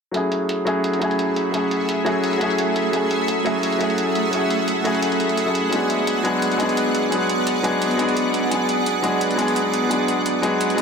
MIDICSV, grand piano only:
0, 0, Header, 1, 2, 480
1, 0, Start_track
1, 0, Key_signature, 3, "minor"
1, 0, Tempo, 348837
1, 200, Time_signature, 4, 2, 24, 8
1, 14886, End_track
2, 0, Start_track
2, 0, Title_t, "Grand piano"
2, 0, Program_c, 0, 0
2, 157, Note_on_c, 0, 54, 70
2, 176, Note_on_c, 0, 57, 63
2, 197, Note_on_c, 0, 61, 62
2, 218, Note_on_c, 0, 64, 64
2, 238, Note_on_c, 0, 68, 75
2, 498, Control_c, 0, 64, 127
2, 872, Note_off_c, 0, 54, 0
2, 881, Note_off_c, 0, 57, 0
2, 892, Note_off_c, 0, 61, 0
2, 894, Note_on_c, 0, 54, 87
2, 902, Note_off_c, 0, 64, 0
2, 904, Note_on_c, 0, 57, 83
2, 912, Note_off_c, 0, 68, 0
2, 916, Note_on_c, 0, 61, 82
2, 926, Note_on_c, 0, 64, 83
2, 937, Note_on_c, 0, 68, 98
2, 1337, Note_off_c, 0, 54, 0
2, 1357, Note_on_c, 0, 54, 86
2, 1358, Note_off_c, 0, 57, 0
2, 1371, Note_off_c, 0, 61, 0
2, 1376, Note_off_c, 0, 64, 0
2, 1378, Note_on_c, 0, 57, 78
2, 1381, Note_off_c, 0, 68, 0
2, 1397, Note_on_c, 0, 61, 78
2, 1418, Note_on_c, 0, 64, 78
2, 1437, Note_on_c, 0, 68, 93
2, 2052, Note_off_c, 0, 54, 0
2, 2072, Note_off_c, 0, 57, 0
2, 2073, Note_on_c, 0, 54, 70
2, 2091, Note_off_c, 0, 61, 0
2, 2093, Note_on_c, 0, 57, 65
2, 2102, Note_off_c, 0, 64, 0
2, 2111, Note_off_c, 0, 68, 0
2, 2112, Note_on_c, 0, 61, 65
2, 2134, Note_on_c, 0, 64, 64
2, 2153, Note_on_c, 0, 68, 77
2, 2789, Note_off_c, 0, 54, 0
2, 2799, Note_off_c, 0, 57, 0
2, 2809, Note_off_c, 0, 61, 0
2, 2813, Note_on_c, 0, 54, 92
2, 2820, Note_off_c, 0, 64, 0
2, 2822, Note_on_c, 0, 57, 81
2, 2829, Note_off_c, 0, 68, 0
2, 2833, Note_on_c, 0, 61, 81
2, 2841, Note_on_c, 0, 64, 82
2, 2853, Note_on_c, 0, 68, 98
2, 3251, Note_off_c, 0, 54, 0
2, 3272, Note_on_c, 0, 54, 85
2, 3274, Note_off_c, 0, 57, 0
2, 3290, Note_off_c, 0, 61, 0
2, 3293, Note_off_c, 0, 64, 0
2, 3295, Note_on_c, 0, 57, 78
2, 3299, Note_off_c, 0, 68, 0
2, 3313, Note_on_c, 0, 61, 82
2, 3334, Note_on_c, 0, 64, 79
2, 3354, Note_on_c, 0, 68, 92
2, 3976, Note_off_c, 0, 54, 0
2, 3995, Note_off_c, 0, 57, 0
2, 3997, Note_on_c, 0, 54, 69
2, 4010, Note_off_c, 0, 61, 0
2, 4016, Note_on_c, 0, 57, 65
2, 4020, Note_off_c, 0, 64, 0
2, 4030, Note_off_c, 0, 68, 0
2, 4035, Note_on_c, 0, 61, 65
2, 4057, Note_on_c, 0, 64, 64
2, 4076, Note_on_c, 0, 68, 80
2, 4711, Note_off_c, 0, 54, 0
2, 4721, Note_off_c, 0, 57, 0
2, 4730, Note_off_c, 0, 61, 0
2, 4738, Note_on_c, 0, 54, 93
2, 4742, Note_off_c, 0, 64, 0
2, 4746, Note_on_c, 0, 57, 82
2, 4751, Note_off_c, 0, 68, 0
2, 4757, Note_on_c, 0, 61, 81
2, 4767, Note_on_c, 0, 64, 83
2, 4778, Note_on_c, 0, 68, 98
2, 5179, Note_off_c, 0, 54, 0
2, 5198, Note_off_c, 0, 57, 0
2, 5200, Note_on_c, 0, 54, 88
2, 5211, Note_off_c, 0, 61, 0
2, 5216, Note_off_c, 0, 64, 0
2, 5219, Note_on_c, 0, 57, 80
2, 5222, Note_off_c, 0, 68, 0
2, 5240, Note_on_c, 0, 61, 79
2, 5259, Note_on_c, 0, 64, 80
2, 5279, Note_on_c, 0, 68, 93
2, 5899, Note_off_c, 0, 54, 0
2, 5918, Note_off_c, 0, 57, 0
2, 5920, Note_on_c, 0, 54, 72
2, 5933, Note_off_c, 0, 61, 0
2, 5939, Note_on_c, 0, 57, 65
2, 5943, Note_off_c, 0, 64, 0
2, 5952, Note_off_c, 0, 68, 0
2, 5959, Note_on_c, 0, 61, 66
2, 5981, Note_on_c, 0, 64, 64
2, 5999, Note_on_c, 0, 68, 79
2, 6633, Note_off_c, 0, 54, 0
2, 6642, Note_off_c, 0, 57, 0
2, 6652, Note_off_c, 0, 61, 0
2, 6660, Note_on_c, 0, 54, 92
2, 6663, Note_off_c, 0, 64, 0
2, 6669, Note_on_c, 0, 57, 83
2, 6673, Note_off_c, 0, 68, 0
2, 6679, Note_on_c, 0, 61, 82
2, 6689, Note_on_c, 0, 64, 83
2, 6699, Note_on_c, 0, 68, 97
2, 7123, Note_off_c, 0, 54, 0
2, 7127, Note_off_c, 0, 57, 0
2, 7133, Note_off_c, 0, 61, 0
2, 7137, Note_off_c, 0, 64, 0
2, 7142, Note_off_c, 0, 68, 0
2, 7508, Note_on_c, 0, 54, 65
2, 7519, Note_on_c, 0, 57, 60
2, 7529, Note_on_c, 0, 61, 59
2, 7539, Note_on_c, 0, 64, 61
2, 7548, Note_on_c, 0, 69, 71
2, 7818, Note_off_c, 0, 54, 0
2, 7839, Note_on_c, 0, 54, 70
2, 7848, Note_off_c, 0, 57, 0
2, 7853, Note_off_c, 0, 61, 0
2, 7858, Note_off_c, 0, 64, 0
2, 7859, Note_on_c, 0, 56, 66
2, 7862, Note_off_c, 0, 69, 0
2, 7880, Note_on_c, 0, 59, 65
2, 7895, Control_c, 0, 64, 0
2, 7902, Note_on_c, 0, 62, 64
2, 7921, Note_on_c, 0, 68, 78
2, 8157, Control_c, 0, 64, 127
2, 8552, Note_off_c, 0, 54, 0
2, 8562, Note_off_c, 0, 56, 0
2, 8573, Note_off_c, 0, 59, 0
2, 8577, Note_on_c, 0, 54, 92
2, 8584, Note_off_c, 0, 62, 0
2, 8587, Note_on_c, 0, 56, 82
2, 8593, Note_off_c, 0, 68, 0
2, 8597, Note_on_c, 0, 59, 84
2, 8606, Note_on_c, 0, 62, 81
2, 8617, Note_on_c, 0, 68, 98
2, 9014, Note_off_c, 0, 54, 0
2, 9035, Note_on_c, 0, 54, 86
2, 9036, Note_off_c, 0, 56, 0
2, 9051, Note_off_c, 0, 59, 0
2, 9056, Note_off_c, 0, 62, 0
2, 9057, Note_on_c, 0, 56, 81
2, 9061, Note_off_c, 0, 68, 0
2, 9076, Note_on_c, 0, 59, 80
2, 9097, Note_on_c, 0, 62, 81
2, 9117, Note_on_c, 0, 68, 97
2, 9735, Note_off_c, 0, 54, 0
2, 9756, Note_on_c, 0, 54, 69
2, 9757, Note_off_c, 0, 56, 0
2, 9771, Note_off_c, 0, 59, 0
2, 9777, Note_on_c, 0, 56, 66
2, 9781, Note_off_c, 0, 62, 0
2, 9791, Note_off_c, 0, 68, 0
2, 9797, Note_on_c, 0, 59, 66
2, 9816, Note_on_c, 0, 62, 64
2, 9838, Note_on_c, 0, 68, 77
2, 10471, Note_off_c, 0, 54, 0
2, 10481, Note_off_c, 0, 56, 0
2, 10491, Note_off_c, 0, 59, 0
2, 10499, Note_on_c, 0, 54, 90
2, 10501, Note_off_c, 0, 62, 0
2, 10510, Note_on_c, 0, 56, 83
2, 10512, Note_off_c, 0, 68, 0
2, 10519, Note_on_c, 0, 59, 84
2, 10530, Note_on_c, 0, 62, 85
2, 10539, Note_on_c, 0, 68, 100
2, 10937, Note_off_c, 0, 54, 0
2, 10957, Note_off_c, 0, 56, 0
2, 10957, Note_on_c, 0, 54, 89
2, 10972, Note_off_c, 0, 59, 0
2, 10978, Note_off_c, 0, 62, 0
2, 10978, Note_on_c, 0, 56, 80
2, 10982, Note_off_c, 0, 68, 0
2, 10998, Note_on_c, 0, 59, 80
2, 11016, Note_on_c, 0, 62, 80
2, 11038, Note_on_c, 0, 68, 98
2, 11656, Note_off_c, 0, 54, 0
2, 11676, Note_off_c, 0, 56, 0
2, 11677, Note_on_c, 0, 54, 69
2, 11692, Note_off_c, 0, 59, 0
2, 11697, Note_on_c, 0, 56, 65
2, 11701, Note_off_c, 0, 62, 0
2, 11712, Note_off_c, 0, 68, 0
2, 11718, Note_on_c, 0, 59, 66
2, 11736, Note_on_c, 0, 62, 66
2, 11757, Note_on_c, 0, 68, 80
2, 12391, Note_off_c, 0, 54, 0
2, 12401, Note_off_c, 0, 56, 0
2, 12412, Note_off_c, 0, 59, 0
2, 12416, Note_on_c, 0, 54, 92
2, 12421, Note_off_c, 0, 62, 0
2, 12426, Note_on_c, 0, 56, 85
2, 12431, Note_off_c, 0, 68, 0
2, 12435, Note_on_c, 0, 59, 82
2, 12445, Note_on_c, 0, 62, 84
2, 12456, Note_on_c, 0, 68, 103
2, 12854, Note_off_c, 0, 54, 0
2, 12874, Note_off_c, 0, 56, 0
2, 12875, Note_on_c, 0, 54, 88
2, 12891, Note_off_c, 0, 59, 0
2, 12895, Note_on_c, 0, 56, 82
2, 12896, Note_off_c, 0, 62, 0
2, 12901, Note_off_c, 0, 68, 0
2, 12916, Note_on_c, 0, 59, 80
2, 12934, Note_on_c, 0, 62, 80
2, 12956, Note_on_c, 0, 68, 99
2, 13574, Note_off_c, 0, 54, 0
2, 13594, Note_off_c, 0, 56, 0
2, 13594, Note_on_c, 0, 54, 72
2, 13611, Note_off_c, 0, 59, 0
2, 13615, Note_on_c, 0, 56, 65
2, 13620, Note_off_c, 0, 62, 0
2, 13631, Note_off_c, 0, 68, 0
2, 13635, Note_on_c, 0, 59, 64
2, 13655, Note_on_c, 0, 62, 65
2, 13675, Note_on_c, 0, 68, 78
2, 14310, Note_off_c, 0, 54, 0
2, 14320, Note_off_c, 0, 56, 0
2, 14330, Note_off_c, 0, 59, 0
2, 14334, Note_on_c, 0, 54, 91
2, 14340, Note_off_c, 0, 62, 0
2, 14343, Note_on_c, 0, 56, 84
2, 14350, Note_off_c, 0, 68, 0
2, 14355, Note_on_c, 0, 59, 85
2, 14366, Note_on_c, 0, 62, 82
2, 14375, Note_on_c, 0, 68, 101
2, 14772, Note_off_c, 0, 54, 0
2, 14792, Note_on_c, 0, 54, 88
2, 14793, Note_off_c, 0, 56, 0
2, 14810, Note_off_c, 0, 59, 0
2, 14813, Note_on_c, 0, 56, 80
2, 14816, Note_off_c, 0, 62, 0
2, 14820, Note_off_c, 0, 68, 0
2, 14833, Note_on_c, 0, 59, 79
2, 14886, Note_off_c, 0, 54, 0
2, 14886, Note_off_c, 0, 56, 0
2, 14886, Note_off_c, 0, 59, 0
2, 14886, End_track
0, 0, End_of_file